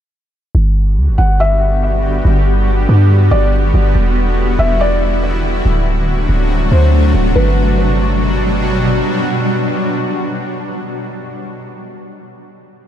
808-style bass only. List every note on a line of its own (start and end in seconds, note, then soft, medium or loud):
0.55 0.99 G1 loud
0.97 1.10 D2 loud
1.08 1.18 G1 medium
1.19 2.21 G1 loud
2.25 2.86 G1 loud
2.89 3.30 G2 loud
3.31 3.72 G1 loud
3.74 3.94 G1 loud
3.95 4.56 E1 loud
4.59 5.61 E1 loud
5.65 6.27 D1 loud
6.29 6.70 D1 loud
6.72 7.13 D2 loud
7.14 7.35 D1 loud
7.36 9.02 G1 loud